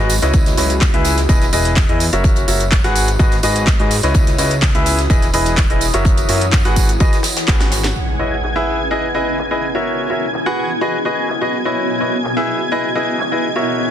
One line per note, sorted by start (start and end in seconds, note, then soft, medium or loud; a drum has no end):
0.00 0.20 G#1 loud
0.00 0.12 F#4 medium
0.00 0.63 F#4 medium
0.00 0.12 G#4 medium
0.00 0.12 B4 medium
0.00 0.63 B4 medium
0.00 0.12 D#5 medium
0.00 1.05 D#5 medium
0.00 0.63 G#5 medium
0.10 closed hi-hat medium
0.10 open hi-hat loud
0.10 tambourine loud
0.22 0.55 C#2 loud
0.22 0.55 E4 medium
0.22 0.55 B4 medium
0.22 0.55 C#5 medium
0.22 0.55 D#5 medium
0.22 snare soft
0.22 closed hi-hat medium
0.22 tambourine soft
0.33 1.53 E4 medium
0.33 kick loud
0.33 closed hi-hat loud
0.33 tambourine medium
0.46 snare soft
0.46 closed hi-hat medium
0.46 tambourine soft
0.57 0.91 C#2 loud
0.57 0.72 E4 medium
0.57 0.72 B4 medium
0.57 0.72 C#5 medium
0.57 0.72 D#5 medium
0.57 snare medium
0.57 closed hi-hat medium
0.57 open hi-hat loud
0.57 tambourine medium
0.66 2.24 B5 medium
0.66 closed hi-hat medium
0.71 tambourine soft
0.81 kick loud
0.81 snare loud
0.81 clap loud
0.81 closed hi-hat medium
0.81 tambourine soft
0.94 1.27 C#2 medium
0.94 1.16 E4 loud
0.94 1.16 G#4 medium
0.94 1.16 B4 medium
0.94 1.16 E5 loud
0.94 closed hi-hat medium
1.04 2.53 G#4 medium
1.04 snare medium
1.04 closed hi-hat medium
1.04 open hi-hat loud
1.04 tambourine loud
1.18 snare soft
1.18 closed hi-hat medium
1.18 tambourine soft
1.28 1.51 E1 medium
1.28 1.44 E4 loud
1.28 1.44 G#4 medium
1.28 1.44 B4 medium
1.28 1.44 D#5 loud
1.28 2.96 E5 medium
1.28 kick loud
1.28 closed hi-hat medium
1.28 tambourine medium
1.42 snare soft
1.42 closed hi-hat soft
1.42 tambourine soft
1.53 1.87 E1 loud
1.53 1.75 E4 medium
1.53 1.75 G#4 medium
1.53 1.75 B4 medium
1.53 1.75 D#5 loud
1.53 closed hi-hat medium
1.53 open hi-hat loud
1.53 tambourine medium
1.65 snare soft
1.65 closed hi-hat medium
1.65 tambourine soft
1.76 kick loud
1.76 snare loud
1.76 clap loud
1.76 closed hi-hat medium
1.76 tambourine medium
1.89 2.10 E2 loud
1.89 2.03 E4 medium
1.89 2.03 G#4 medium
1.89 2.03 B4 medium
1.89 2.03 D#5 medium
1.89 closed hi-hat soft
2.00 open hi-hat loud
2.00 tambourine medium
2.13 2.46 F#1 loud
2.13 2.45 F#4 medium
2.13 2.45 A#4 medium
2.13 2.45 C#5 medium
2.13 2.45 E5 loud
2.13 closed hi-hat medium
2.13 tambourine soft
2.24 4.44 F#4 medium
2.24 kick loud
2.24 closed hi-hat loud
2.24 tambourine soft
2.36 closed hi-hat soft
2.36 closed hi-hat medium
2.36 tambourine soft
2.43 3.43 C#5 medium
2.48 2.82 F#1 loud
2.48 2.63 F#4 medium
2.48 2.63 A#4 medium
2.48 2.63 C#5 medium
2.48 2.63 E5 medium
2.48 closed hi-hat medium
2.48 open hi-hat loud
2.48 tambourine medium
2.60 closed hi-hat medium
2.60 tambourine soft
2.72 kick loud
2.72 snare loud
2.72 clap loud
2.72 closed hi-hat medium
2.72 tambourine medium
2.84 3.17 G#1 loud
2.84 3.07 F#4 loud
2.84 3.07 G#4 medium
2.84 3.07 B4 medium
2.84 3.07 F#5 loud
2.84 snare medium
2.84 closed hi-hat medium
2.95 closed hi-hat medium
2.95 open hi-hat loud
2.95 tambourine medium
3.08 closed hi-hat medium
3.08 tambourine soft
3.19 3.34 F#4 loud
3.19 3.34 G#4 medium
3.19 3.34 B4 medium
3.19 3.34 D#5 loud
3.19 kick loud
3.19 closed hi-hat medium
3.19 tambourine soft
3.25 4.44 B4 medium
3.31 snare soft
3.31 closed hi-hat soft
3.31 tambourine soft
3.43 3.77 G#1 medium
3.43 3.66 F#4 medium
3.43 3.66 G#4 medium
3.43 3.66 B4 medium
3.43 3.66 D#5 loud
3.43 closed hi-hat medium
3.43 open hi-hat loud
3.43 tambourine medium
3.49 6.34 D#6 medium
3.56 closed hi-hat medium
3.56 tambourine soft
3.67 kick loud
3.67 snare loud
3.67 clap loud
3.67 closed hi-hat medium
3.67 tambourine soft
3.80 4.01 G#2 loud
3.80 3.93 F#4 medium
3.80 3.93 G#4 medium
3.80 3.93 B4 medium
3.80 3.93 D#5 medium
3.80 closed hi-hat soft
3.91 closed hi-hat medium
3.91 open hi-hat loud
3.91 tambourine medium
4.02 4.36 C#2 loud
4.02 4.36 E4 medium
4.02 4.36 B4 medium
4.02 4.36 C#5 medium
4.02 4.36 D#5 medium
4.02 snare soft
4.02 closed hi-hat medium
4.02 tambourine soft
4.14 6.77 E4 medium
4.14 kick loud
4.14 closed hi-hat medium
4.14 tambourine soft
4.27 5.34 C#5 medium
4.27 snare soft
4.27 closed hi-hat medium
4.27 tambourine soft
4.38 4.72 C#2 medium
4.38 4.53 E4 medium
4.38 4.53 B4 medium
4.38 4.53 C#5 medium
4.38 4.53 D#5 medium
4.38 snare medium
4.38 closed hi-hat medium
4.38 open hi-hat loud
4.38 tambourine medium
4.51 closed hi-hat medium
4.51 tambourine soft
4.62 kick loud
4.62 snare loud
4.62 clap loud
4.62 closed hi-hat medium
4.62 tambourine soft
4.75 5.08 C#2 loud
4.75 4.97 E4 loud
4.75 4.97 G#4 medium
4.75 4.97 B4 loud
4.75 4.97 E5 loud
4.75 closed hi-hat medium
4.86 snare medium
4.86 closed hi-hat medium
4.86 open hi-hat loud
4.86 tambourine medium
4.99 snare soft
4.99 closed hi-hat medium
4.99 tambourine soft
5.10 5.32 E1 medium
5.10 5.25 E4 loud
5.10 5.25 G#4 medium
5.10 5.25 B4 medium
5.10 5.25 D#5 loud
5.10 kick loud
5.10 closed hi-hat medium
5.10 tambourine soft
5.22 snare soft
5.22 closed hi-hat soft
5.22 tambourine soft
5.34 5.68 E1 medium
5.34 5.56 E4 medium
5.34 5.56 G#4 medium
5.34 5.56 B4 medium
5.34 5.56 D#5 loud
5.34 closed hi-hat medium
5.34 open hi-hat loud
5.34 tambourine medium
5.46 snare soft
5.46 closed hi-hat medium
5.46 tambourine soft
5.57 kick loud
5.57 snare loud
5.57 clap loud
5.57 closed hi-hat loud
5.57 tambourine medium
5.70 5.91 E1 loud
5.70 5.84 E4 medium
5.70 5.84 G#4 medium
5.70 5.84 B4 medium
5.70 5.84 D#5 medium
5.70 closed hi-hat soft
5.81 closed hi-hat medium
5.81 open hi-hat loud
5.81 tambourine loud
5.94 6.27 F#1 loud
5.94 6.26 F#4 medium
5.94 6.26 A#4 medium
5.94 6.26 C#5 medium
5.94 6.26 E5 loud
5.94 closed hi-hat medium
5.94 tambourine soft
6.05 kick loud
6.05 closed hi-hat loud
6.05 tambourine soft
6.17 closed hi-hat soft
6.17 closed hi-hat medium
6.17 tambourine soft
6.28 6.63 F#2 loud
6.28 6.44 F#4 medium
6.28 6.44 A#4 medium
6.28 6.44 C#5 medium
6.28 6.44 E5 medium
6.28 closed hi-hat medium
6.28 open hi-hat loud
6.28 tambourine medium
6.38 8.25 F#5 loud
6.38 closed hi-hat medium
6.38 tambourine soft
6.52 kick loud
6.52 snare loud
6.52 clap loud
6.52 closed hi-hat medium
6.52 tambourine medium
6.65 6.98 G#1 loud
6.65 6.88 F#4 loud
6.65 6.88 G#4 medium
6.65 6.88 B4 medium
6.65 6.88 F#5 loud
6.65 snare medium
6.65 closed hi-hat medium
6.65 tambourine soft
6.76 7.96 D#4 medium
6.76 kick medium
6.76 closed hi-hat medium
6.76 open hi-hat loud
6.76 tambourine medium
6.89 closed hi-hat medium
6.89 tambourine soft
7.00 7.13 G#1 loud
7.00 7.15 F#4 medium
7.00 7.15 G#4 medium
7.00 7.15 B4 medium
7.00 7.15 D#5 loud
7.00 kick loud
7.00 closed hi-hat medium
7.00 tambourine soft
7.06 8.25 G#4 medium
7.13 snare soft
7.13 closed hi-hat soft
7.13 tambourine soft
7.23 snare loud
7.23 closed hi-hat medium
7.23 open hi-hat loud
7.23 tambourine medium
7.31 9.15 B4 medium
7.37 snare loud
7.37 closed hi-hat medium
7.37 tambourine soft
7.48 7.93 G#1 loud
7.48 7.94 F#4 medium
7.48 7.94 G#4 medium
7.48 7.94 B4 medium
7.48 7.94 F#5 medium
7.48 kick loud
7.48 snare medium
7.48 clap loud
7.48 closed hi-hat medium
7.48 tambourine soft
7.60 snare loud
7.60 snare medium
7.60 closed hi-hat soft
7.60 closed hi-hat medium
7.72 snare loud
7.72 closed hi-hat medium
7.72 open hi-hat loud
7.72 tambourine medium
7.84 snare medium
7.84 closed hi-hat medium
7.84 tambourine soft
7.96 9.15 C#4 medium
7.96 13.91 G#5 medium
7.96 13.91 G#6 medium
7.96 impact medium
8.13 10.15 E4 medium
8.19 8.34 E4 medium
8.19 8.34 B4 medium
8.19 8.34 C#5 medium
8.19 8.34 D#5 medium
8.28 9.86 D#5 medium
8.43 clap loud
8.56 8.78 E4 medium
8.56 8.78 G#4 medium
8.56 8.78 B4 medium
8.56 8.78 E5 loud
8.67 9.86 B3 medium
8.91 9.05 E4 medium
8.91 9.05 G#4 medium
8.91 9.05 B4 medium
8.91 9.05 D#5 loud
9.15 9.37 E4 medium
9.15 9.37 G#4 medium
9.15 9.37 B4 medium
9.15 9.37 D#5 loud
9.39 clap loud
9.51 9.65 E4 medium
9.51 9.65 G#4 medium
9.51 9.65 B4 medium
9.51 9.65 D#5 medium
9.75 10.07 F#4 medium
9.75 10.07 A#4 medium
9.75 10.07 C#5 medium
9.75 10.07 E5 medium
9.86 11.05 C#4 medium
10.01 12.05 F#4 medium
10.01 11.05 A#4 medium
10.10 10.24 F#4 medium
10.10 10.24 A#4 medium
10.10 10.24 C#5 medium
10.10 10.24 E5 medium
10.34 clap loud
10.46 10.69 F#4 medium
10.46 10.69 G#4 medium
10.46 10.69 B4 medium
10.46 10.69 F#5 loud
10.58 12.05 B3 medium
10.58 clap soft
10.81 10.96 F#4 medium
10.81 10.96 G#4 medium
10.81 10.96 B4 medium
10.81 10.96 D#5 loud
10.92 13.67 D#5 medium
11.05 11.28 F#4 medium
11.05 11.28 G#4 medium
11.05 11.28 B4 medium
11.05 11.28 D#5 loud
11.29 clap loud
11.41 11.55 F#4 medium
11.41 11.55 G#4 medium
11.41 11.55 B4 medium
11.41 11.55 D#5 medium
11.65 11.98 E4 medium
11.65 11.98 B4 medium
11.65 11.98 C#5 medium
11.65 11.98 D#5 medium
11.77 12.96 C#4 medium
12.00 12.15 E4 medium
12.00 12.15 B4 medium
12.00 12.15 C#5 medium
12.00 12.15 D#5 medium
12.00 open hi-hat loud
12.06 13.91 E4 medium
12.24 clap loud
12.37 12.59 E4 medium
12.37 12.59 G#4 medium
12.37 12.59 B4 medium
12.37 12.59 E5 loud
12.48 13.67 B3 medium
12.72 12.86 E4 medium
12.72 12.86 G#4 medium
12.72 12.86 B4 medium
12.72 12.86 D#5 loud
12.87 13.91 G#4 medium
12.95 13.18 E4 medium
12.95 13.18 G#4 medium
12.95 13.18 B4 medium
12.95 13.18 D#5 loud
13.20 clap loud
13.32 13.46 E4 medium
13.32 13.45 G#4 medium
13.32 13.45 B4 medium
13.32 13.45 D#5 medium
13.56 13.88 F#4 medium
13.56 13.88 A#4 medium
13.56 13.88 C#5 medium
13.56 13.88 E5 medium
13.67 13.91 C#4 medium
13.73 13.91 F#4 medium